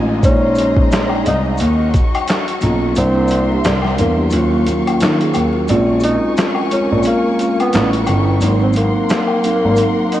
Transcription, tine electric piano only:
0.00 0.23 G#3 medium
0.00 0.25 C4 medium
0.00 0.24 D#4 medium
0.00 0.24 F4 loud
0.23 1.17 G#3 medium
0.23 1.17 C#4 medium
0.23 1.18 D#4 loud
0.23 1.17 C5 medium
2.61 2.86 F#3 medium
2.61 2.86 A#3 medium
2.61 2.87 C#4 medium
2.61 2.87 F4 medium
2.96 3.30 G3 medium
2.96 3.31 A#3 medium
2.96 3.31 D4 medium
2.96 3.32 E4 medium
3.51 3.64 G3 medium
3.51 3.65 A#3 medium
3.51 3.65 D4 medium
3.51 3.66 G4 medium
3.97 4.11 G3 medium
3.97 4.11 A#3 medium
3.97 4.12 D4 medium
3.97 4.12 E4 medium
4.17 4.31 G3 medium
4.17 4.31 A#3 medium
4.17 4.32 D4 medium
4.17 4.33 G4 medium
4.31 5.42 F#3 loud
4.31 5.42 A#3 medium
4.31 5.42 C#4 medium
4.31 5.01 F4 loud
5.22 5.35 G#4 medium
5.35 5.53 A#4 medium
5.56 5.87 F#4 medium
5.69 6.38 G#3 loud
5.69 6.38 C4 medium
5.69 6.39 C#4 medium
5.69 6.39 F4 loud
6.71 7.19 G#3 medium
6.71 7.19 C4 medium
6.71 7.20 C#4 medium
6.71 7.20 F4 medium
7.39 7.73 G#3 medium
7.39 7.73 C4 medium
7.39 7.74 C#4 medium
7.39 7.74 F4 medium
7.73 8.30 G3 medium
7.73 8.30 B3 medium
7.73 8.31 C#4 medium
7.73 8.31 E4 medium
8.39 9.09 F#3 medium
8.39 9.10 A#3 medium
8.39 9.10 C4 medium
8.39 9.11 D#4 loud
9.43 10.20 F#3 medium
9.43 10.20 A#3 medium
9.43 10.20 C4 medium
9.43 10.20 D#4 medium

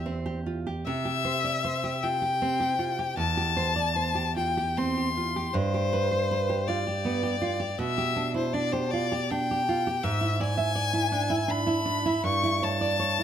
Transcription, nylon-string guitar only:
0.00 0.83 E2 medium
0.00 0.18 G4 medium
0.06 0.39 C4 medium
0.26 0.59 G4 medium
0.46 0.67 F4 medium
0.67 0.86 G4 medium
0.87 3.15 C3 medium
1.05 1.37 G4 medium
1.25 1.44 C5 medium
1.44 1.64 D5 medium
1.64 1.95 C5 medium
1.84 2.14 G4 medium
2.03 2.22 F4 medium
2.22 2.53 G4 medium
2.42 2.72 C4 medium
2.60 2.91 G4 medium
2.79 2.99 F4 medium
2.99 3.18 G4 medium
3.17 5.49 E2 medium
3.37 3.69 G4 medium
3.57 3.76 C5 medium
3.76 3.95 D5 medium
3.96 4.28 C5 medium
4.15 4.49 G4 medium
4.36 4.57 F4 medium
4.57 4.89 G4 medium
4.78 5.09 C4 medium
4.97 5.27 G4 medium
5.17 5.35 F4 medium
5.36 5.54 G4 medium
5.54 7.75 G2 medium
5.74 6.03 G4 medium
5.93 6.11 B4 medium
6.11 6.29 C5 medium
6.31 6.60 B4 medium
6.50 6.79 G4 medium
6.69 6.86 F4 medium
6.87 7.16 G4 medium
7.05 7.34 B3 medium
7.23 7.53 G4 medium
7.42 7.60 F4 medium
7.60 7.78 G4 medium
7.79 10.00 B2 medium
7.98 8.27 G4 medium
8.16 8.46 D4 medium
8.34 8.53 E4 medium
8.54 8.85 D4 medium
8.73 9.05 G4 medium
8.93 9.13 F4 medium
9.12 9.43 G4 medium
9.31 9.61 D4 medium
9.51 9.79 G4 medium
9.69 9.86 F4 medium
9.87 10.04 G4 medium
10.04 12.21 G#2 medium
10.21 10.50 E4 medium
10.40 10.57 D5 medium
10.57 10.75 E5 medium
10.75 11.05 D5 medium
10.93 11.23 E4 medium
11.12 11.31 D4 medium
11.30 11.60 E4 medium
11.48 11.79 D4 medium
11.67 11.97 E4 medium
11.85 12.05 D4 medium
12.06 12.25 E4 medium
12.24 13.23 G2 medium
12.43 12.74 E4 medium
12.62 12.81 C#5 medium
12.81 12.99 D5 medium
12.99 13.23 C#5 medium
13.19 13.23 E4 medium

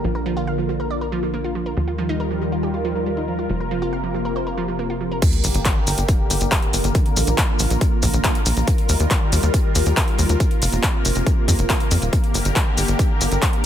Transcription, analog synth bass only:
0.04 1.75 A#1 medium
1.77 3.47 D#2 medium
3.49 5.20 F1 medium
5.44 5.50 G1 medium
5.55 5.61 G1 medium
5.87 5.94 G1 loud
5.98 6.04 G1 medium
6.30 6.37 G1 loud
6.41 6.47 G1 medium
6.73 6.80 G1 loud
6.84 6.91 G1 medium
7.16 7.23 A#1 loud
7.27 7.34 A#1 medium
7.60 7.66 A#1 loud
7.70 7.77 A#1 medium
8.03 8.09 A#1 loud
8.14 8.20 A#1 medium
8.46 8.52 A#1 medium
8.57 8.63 A#1 medium
8.89 8.96 D#2 loud
9.00 9.06 D#2 medium
9.32 9.39 D#2 loud
9.43 9.50 D#2 medium
9.75 9.82 D#2 medium
9.86 9.93 D#2 medium
10.19 10.25 D#2 medium
10.29 10.36 D#2 medium
10.62 10.68 F1 medium
10.73 10.79 F1 medium
11.05 11.11 F1 loud
11.16 11.22 F1 medium
11.48 11.55 F2 medium
11.59 11.65 F1 medium
11.91 11.98 F2 medium
12.02 12.09 D#1 medium
12.34 12.41 G1 loud
12.45 12.52 G1 medium
12.78 12.84 G1 loud
12.88 12.95 G1 medium
13.21 13.27 G1 loud
13.32 13.38 G1 medium

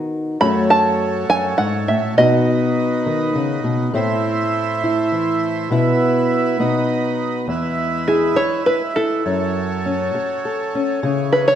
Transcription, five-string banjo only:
0.41 0.70 B5 loud
0.70 1.29 A5 medium
1.30 1.60 G#5 medium
1.58 1.88 F#5 medium
1.88 2.17 E5 medium
2.18 3.61 D#5 medium
8.08 8.38 G#4 medium
8.36 8.66 C#5 medium
8.66 8.74 B4 medium
8.96 9.80 A4 medium
11.32 11.47 B4 medium
11.48 11.55 C#5 medium

